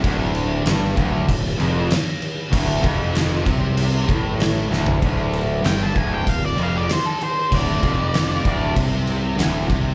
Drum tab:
CC |x-x-x-x-x-x-x-x-|x-x-x-x-x-x-x---|x-x-x-x-x-x-x-x-|x-x-x-x-x-x-x-x-|
SD |----o----o--o---|----o-------o-o-|----o-------o---|----o-------o---|
FT |----------------|---------------o|----------------|----------------|
BD |o-----o-o-------|o-o---o---o-----|o-----o-o-------|o-o---o-o-----o-|